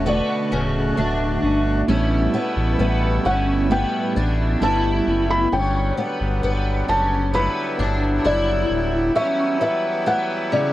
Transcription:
Already playing: E1 B2 A3 F#4 F#5
0.05 D3 A3 B3 F#4 D5
0.51 D1 C#3 F#4
0.55 A3
0.96 D1 D3 A3 D4 E5
1.00 F#4
1.42 G1 C#4 F#4
1.46 A3
1.88 A1 A2 B2 G3 B3 C#4 E4
2.33 B3 C#4 E4
2.38 B3
2.57 A1
2.78 A1 G3 B3 C#4
2.83 E4
3.24 G1 C#4 E4 F#5
3.29 B3
3.69 A2 G3 B3 C#4 E4 G5
4.15 A1 C#4 D4 E4
4.19 B3
4.60 G1 G3 B3 C#4 E4 A5
4.65 E4
5.06 F#1 C#4 E4
5.10 B3
5.31 B5
5.52 G1 D3 F#3 G3 C#4 G5
5.98 B3
6.21 G1
6.43 G1 B3
6.88 F#1 C#4 A5
7.34 B3 E4 B5
7.79 G1 D4
8.24 F#1 E4 D5
8.70 D1
9.14 E3 F#3 C#4 E4 E5
9.61 B3 E5
10.06 B3 F#5
10.52 C#3 D5

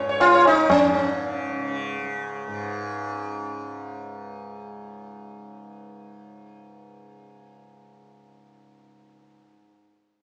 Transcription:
Already playing: C#2 C#3
0.00 G#2
0.09 C#5
0.20 F4, tabla na
0.34 C#5
0.44 C#3 D#4, tabla na
0.70 G#2 C#4, tabla na, tabla ge
1.14 C#3
1.59 C#3
2.03 C#2
2.48 G#2

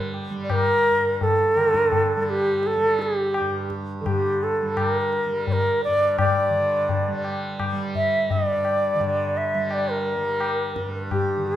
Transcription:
Already playing: G2 D3 G3 A#4
0.14 tabla na
0.30 G3
0.43 D5
0.50 A#4, tabla na, tabla ge
0.91 G2
1.21 A4, tabla tin, tabla ge
1.55 D3, tabla na
1.74 tabla ke
1.92 tabla tin, tabla ge
2.17 G3
2.22 A4
2.30 G4
2.63 A4, tabla te
2.77 G3
2.99 G4, tabla te
3.34 tabla na
3.40 G2
3.70 tabla ke
4.01 D3 A4
4.06 G4, tabla na, tabla ge
4.43 A4
4.62 G3
4.77 A4, tabla na, tabla ge
4.89 A#4
5.12 tabla te
5.26 G3
5.47 D5, tabla tin, tabla ge
5.53 A#4
5.84 G2 D5
6.19 D5, tabla na, tabla ge
6.49 D3
6.89 tabla tin, tabla ge
7.08 G3
7.24 tabla na
7.60 tabla na, tabla ge
7.73 G3
7.95 E5, tabla ge
8.30 D#5, tabla tin, tabla ge
8.34 G2
8.47 D5
8.65 tabla na
8.94 D3
9.00 tabla tin, tabla ge
9.37 E5
9.54 G3
9.71 D5, tabla na
9.91 A#4
10.16 G3
10.40 tabla na
10.76 G2, tabla ke
11.11 G4, tabla na, tabla ge
11.37 D3
11.47 A4

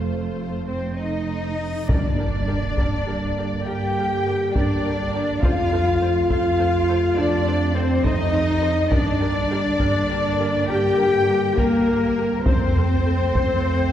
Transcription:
Already playing: F1 F2 C3 A3 F4 A4 C5, reverse cymbal
0.68 C4 C5
0.98 D#4 D#5
1.88 G2 D3 A#3 D4 G4 A#4 D5, taiko, sub drop
2.19 G4 A#4
2.47 G4 A#4
2.77 G2 G4 A#4, taiko
3.06 G4 A#4
3.37 G4 A#4
3.66 G2 G4 A#4 G5
3.98 G4 A#4
4.27 G4 A#4
4.54 G2 D4 G4 A#4 D5, taiko
4.85 G4 A#4
5.14 G4 A#4
5.42 F2 C3 A3 F4 A4 C5 F5, taiko
5.73 A4 C5
6.01 A4 C5
6.29 F2 F4 A4 C5 F5, taiko
6.59 A4 C5
6.89 A4 C5
7.16 F2 D4 A4 C5 D5
7.47 A4 C5
7.75 C4 A4 C5
8.04 F2 D#4 A4 C5 D#5, taiko
8.33 A4 C5
8.61 A4 C5
8.91 G2 D3 A#3 D4 G4 A#4 D5, taiko
9.20 G4 A#4
9.51 G4 A#4
9.79 G2 G4 A#4, taiko
10.09 G4 A#4
10.40 G4 A#4
10.68 G2 G4 A#4 G5
10.98 G4 A#4
11.29 G4 A#4
11.57 G2 A#3 G4 A#4, taiko
11.87 G4 A#4
12.17 G4 A#4
12.44 F2 F3 A3 C4 A4 C5, taiko
12.76 A4 C5, taiko low
13.06 A4 C5
13.35 F2 A4 C5, taiko
13.65 A4 C5

